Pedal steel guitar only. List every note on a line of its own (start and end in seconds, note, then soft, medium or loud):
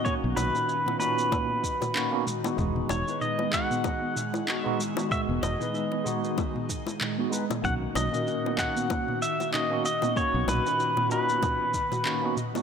0.05 0.13 C#5 loud
0.36 0.98 B4 medium
1.00 2.22 B4 medium
2.90 3.23 C#5 medium
3.21 3.51 D#5 medium
3.54 4.62 F#5 loud
4.62 5.11 E5 loud
5.12 5.20 E5 loud
5.43 7.28 D#5 medium
7.65 7.73 F#5 loud
7.96 8.55 D#5 loud
8.59 9.22 F#5 loud
9.22 9.51 E5 loud
9.53 9.84 D#5 loud
9.86 10.18 D#5 medium
10.17 10.49 C#5 loud
10.49 11.11 B4 medium
11.12 12.34 B4 medium